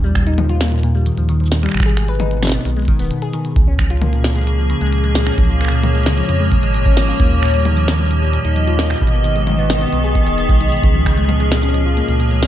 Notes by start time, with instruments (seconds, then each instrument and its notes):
Already playing: sub bass D#2
0.04 synth pluck G3
0.15 synth pluck A#2, finger snap, kick, closed hi-hat, shaker
0.27 synth pluck D#4, closed hi-hat
0.38 synth pluck F3, closed hi-hat, high tom
0.49 synth pluck F4, closed hi-hat
0.61 synth pluck A#3, snare, closed hi-hat
0.65 closed hi-hat
0.68 closed hi-hat
0.72 synth pluck A#2, closed hi-hat
0.76 closed hi-hat
0.80 closed hi-hat
0.83 synth pluck A#2, closed hi-hat
0.95 synth pluck G3
1.06 synth pluck D#3, closed hi-hat
1.18 sub bass D#2, synth pluck F3, closed hi-hat
1.29 synth pluck D#3, closed hi-hat
1.40 synth pluck F3, closed hi-hat
1.44 closed hi-hat, shaker
1.48 snare, closed hi-hat
1.52 synth pluck A#2, closed hi-hat
1.55 closed hi-hat
1.59 finger snap, closed hi-hat
1.63 synth pluck G3, finger snap, closed hi-hat
1.69 finger snap
1.72 sub bass G#1, finger snap
1.74 synth pluck B2, finger snap, closed hi-hat
1.77 finger snap, kick
1.80 finger snap, closed hi-hat
1.83 synth pluck G#4, finger snap
1.90 closed hi-hat
1.97 synth pluck G#3, finger snap, closed hi-hat, shaker
2.08 synth pluck B4, closed hi-hat
2.20 synth pluck D#4, closed hi-hat, high tom
2.31 synth pluck B2, closed hi-hat
2.43 synth pluck B2, finger snap, snare, closed hi-hat, high tom
2.45 snare
2.47 snare
2.49 snare
2.52 synth pluck B3, snare, closed hi-hat
2.65 sub bass B1, synth pluck D#3, closed hi-hat
2.77 synth pluck G#3, closed hi-hat
2.80 closed hi-hat
2.82 closed hi-hat
2.85 kick, closed hi-hat
2.88 synth pluck D#3, closed hi-hat
2.99 sub bass D#1, synth pluck B3, closed hi-hat, shaker
3.02 shaker
3.04 shaker
3.06 shaker
3.11 synth pluck B2, closed hi-hat
3.22 synth pluck G#4, closed hi-hat
3.33 synth pluck D#3, closed hi-hat, shaker
3.45 synth pluck B2, closed hi-hat
3.56 sub bass C#2, synth pluck A#2, ambient pad F3, kick, closed hi-hat
3.68 synth pluck C#4
3.76 synth pluck F3, ambient pad G#4, finger snap, kick, closed hi-hat, shaker
3.83 ambient pad A#3
3.90 synth pluck F4, closed hi-hat
4.02 synth pluck A#3, closed hi-hat, high tom
4.13 synth pluck A#2, closed hi-hat
4.24 synth pluck A#2, snare, closed hi-hat
4.27 closed hi-hat
4.30 closed hi-hat
4.33 closed hi-hat
4.36 synth pluck G#3, closed hi-hat
4.39 closed hi-hat
4.41 closed hi-hat
4.44 synth pluck C#3, closed hi-hat
4.47 closed hi-hat
4.58 synth pluck F3
4.70 synth pluck C#3, closed hi-hat
4.81 sub bass C#2, synth pluck G#3, closed hi-hat
4.87 closed hi-hat
4.93 synth pluck A#2, closed hi-hat
4.98 closed hi-hat
5.04 synth pluck G#3, closed hi-hat
5.15 synth pluck A#2, snare, closed hi-hat
5.20 ambient pad C#5
5.27 synth pluck C#4, finger snap, closed hi-hat
5.38 sub bass C#2, synth pluck F3, kick, closed hi-hat
5.49 synth pluck F4
5.61 synth pluck A#3, finger snap, closed hi-hat
5.65 finger snap
5.68 synth pluck A#2, finger snap, closed hi-hat
5.84 synth pluck A#2, closed hi-hat, high tom
5.95 synth pluck G#3, closed hi-hat
5.98 closed hi-hat
6.01 closed hi-hat
6.03 synth pluck C#3, finger snap, snare, closed hi-hat
6.06 closed hi-hat, high tom
6.18 synth pluck F3, closed hi-hat
6.29 sub bass F2, synth pluck C#3, closed hi-hat
6.40 synth pluck G#3
6.52 synth pluck A#2, kick, closed hi-hat
6.63 sub bass G#1, synth pluck G#3, closed hi-hat
6.74 synth pluck A#2, closed hi-hat
6.86 synth pluck C#4, kick, closed hi-hat
6.97 synth pluck F3, snare, closed hi-hat, shaker
7.05 synth pluck F4, closed hi-hat, shaker
7.12 closed hi-hat, shaker
7.16 closed hi-hat
7.20 sub bass D#2, synth pluck A#3, kick, closed hi-hat
7.28 synth pluck A#2, closed hi-hat
7.43 synth pluck A#2, finger snap, closed hi-hat, shaker
7.46 closed hi-hat
7.48 closed hi-hat
7.51 closed hi-hat
7.54 synth pluck G3, closed hi-hat
7.57 closed hi-hat
7.60 closed hi-hat
7.62 closed hi-hat
7.65 synth pluck D#3, closed hi-hat, high tom
7.77 synth pluck F3, closed hi-hat
7.88 synth pluck D#3, snare, closed hi-hat
7.94 closed hi-hat
7.99 synth pluck G3, ambient pad G4 D#5
8.11 synth pluck A#2, closed hi-hat
8.22 synth pluck G3
8.33 synth pluck A#2, closed hi-hat
8.45 sub bass D#2, synth pluck D#4, closed hi-hat
8.56 synth pluck F3, closed hi-hat
8.68 synth pluck F4, closed hi-hat
8.79 synth pluck A#3, snare, closed hi-hat, shaker
8.83 closed hi-hat
8.86 finger snap, closed hi-hat, shaker
8.90 synth pluck A#2, closed hi-hat
8.94 closed hi-hat, shaker
8.98 sub bass G#1, synth pluck B2, ambient pad D#3, kick, closed hi-hat
9.07 closed hi-hat
9.13 synth pluck B3
9.24 synth pluck D#3, closed hi-hat, shaker
9.36 synth pluck G#3, ambient pad B3, closed hi-hat
9.47 synth pluck D#3, closed hi-hat, high tom
9.49 high tom
9.52 high tom
9.54 high tom
9.56 synth pluck B3, high tom
9.61 ambient pad G#4
9.70 synth pluck B2, finger snap, snare, closed hi-hat, high tom
9.81 synth pluck B3, closed hi-hat
9.93 sub bass B1, synth pluck B2, closed hi-hat
10.04 synth pluck G#4
10.15 synth pluck D#3, kick, closed hi-hat
10.27 sub bass D#1, synth pluck D#3, closed hi-hat, shaker
10.38 synth pluck B2, closed hi-hat
10.49 sub bass B1, synth pluck G#3, kick, closed hi-hat
10.61 synth pluck D#4, closed hi-hat, shaker
10.68 sub bass G#1, synth pluck B2, closed hi-hat, shaker
10.76 shaker
10.83 sub bass C#2, synth pluck C#3, ambient pad F3, kick, closed hi-hat
10.95 synth pluck F3
11.06 synth pluck C#3, finger snap, kick, closed hi-hat, shaker
11.18 synth pluck G#3, closed hi-hat
11.29 synth pluck A#2, closed hi-hat, high tom
11.38 synth pluck G#3, ambient pad A#3, closed hi-hat
11.52 synth pluck A#2, snare, closed hi-hat
11.63 synth pluck C#4, closed hi-hat
11.67 ambient pad C#5
11.74 synth pluck F3, closed hi-hat
11.86 synth pluck F4
11.97 synth pluck A#3, closed hi-hat
12.08 sub bass C#2, synth pluck A#2, closed hi-hat
12.20 synth pluck A#2, closed hi-hat
12.31 synth pluck G#3, closed hi-hat
12.43 synth pluck C#3, snare, closed hi-hat, shaker